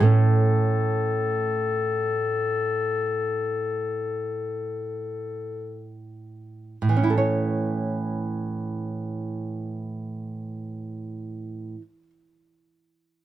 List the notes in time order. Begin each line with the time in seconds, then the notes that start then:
0.00 A2 A3 C#4 A4
6.82 A2
6.89 E3
6.96 C#4
7.03 E4
7.10 A4
7.18 C#5